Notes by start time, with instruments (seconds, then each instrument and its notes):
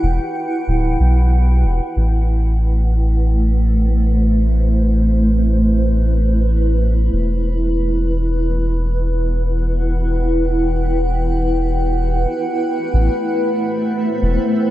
Already playing: ambient pad E4 B4 F#5 G5
0.03 sub bass E1
0.67 sub bass D1
1.00 sub bass B1
1.64 sub bass E1
1.96 sub bass A1, ambient pad A3
2.19 ambient pad B4
2.37 ambient pad E4
3.34 ambient pad C5
7.13 sub bass E1
8.64 ambient pad F#5
9.43 ambient pad G5
12.29 ambient pad A3
12.93 sub bass A1
13.23 ambient pad C5
14.22 sub bass E1